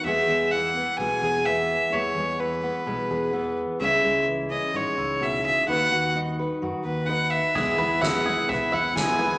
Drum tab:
SD |--------|--------|--------|--------|
FT |--------|--------|--------|--------|
BD |--------|--------|--------|--------|

SD |--o---o-|
FT |oo-ooo--|
BD |o-o-o-o-|